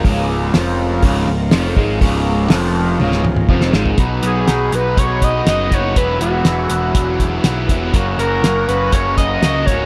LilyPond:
<<
  \new Staff \with { instrumentName = "Analog synth lead" } { \time 4/4 \key des \mixolydian \tempo 4 = 121 r1 | r1 | r8 aes'4 ces''8 des''8 ees''8 ees''8 des''8 | b'8 fis'2. r8 |
r8 bes'4 ces''8 des''8 ees''8 ees''8 des''8 | }
  \new Staff \with { instrumentName = "Transistor combo organ" } { \time 4/4 \key des \mixolydian << { <f aes des' bes'>1~ | <f aes des' bes'>1 | <aes' ces'' ges''>1~ | <aes' ces'' ges''>1 |
<bes' des'' bes''>1 | } \\ { f'1~ | f'1 | ees''1 | e''1 |
r1 | } >> }
  \new Staff \with { instrumentName = "Overdriven electric guitar" } { \time 4/4 \key des \mixolydian <des, des>4 <f, f>4 <des, des>8 des,8 <f, f>8 <aes, aes>8 | <des, des>4 <f, f>4 <des, des>8 des,8 <f, f>8 <aes, aes>8 | <ces ges ces' ees' ges' ces''>8 <ces' ees' ges' ces''>8 <ces' ees' ges' ces''>8 <ces' ees' ges' ces''>8 <ces ges ces' ees' ges' ces''>4 <ces' ees' ges' ces''>8 <ces' ees' ges' ces''>8 | <e, b, e fis b e'>8 <e fis b e'>8 <e fis b e'>8 <e fis b e'>8 <e, b, e fis b e'>4 <e fis b e'>8 <e fis b e'>8 |
<ges, des ges bes des' ges'>8 <ges bes des' ges'>8 <ges bes des' ges'>8 <ges bes des' ges'>8 <ges, des ges bes des' ges'>4 <ges bes des' ges'>8 <ges bes des' ges'>8 | }
  \new Staff \with { instrumentName = "Picked electric bass" } { \clef bass \time 4/4 \key des \mixolydian des,,4 f,,4 des,,8 des,,8 f,,8 aes,,8 | des,,4 f,,4 des,,8 des,,8 f,,8 aes,,8 | ces,8 ces,8 ces,8 ces,8 ces,4 ges,,8 ges,,8 | e,,8 e,,8 e,,8 e,,8 e,,4 b,,8 e,,8 |
ges,,8 ges,,8 ges,,8 ges,,8 ges,,4 des,8 des,,8 | }
  \new DrumStaff \with { instrumentName = "Drums" } \drummode { \time 4/4 <hho bd>4 <hho sn>4 <hho bd>4 <hho sn>8 bd8 | <hho bd>4 <hho sn>4 tommh16 sn16 toml16 toml16 bd16 sn16 sn16 tomfh16 | <hh bd>8 hh8 <hh sn>8 hh8 <hh bd>8 <hh bd>8 <hh sn>8 <hh bd>8 | <hh bd>8 hh8 <hh sn>8 hh8 <hh bd>8 <hh bd>8 <hh sn>8 <hh bd>8 |
<hh bd>8 hh8 <hh sn>8 hh8 <hh bd>8 <hh bd>8 <hh sn>8 <hh bd>8 | }
>>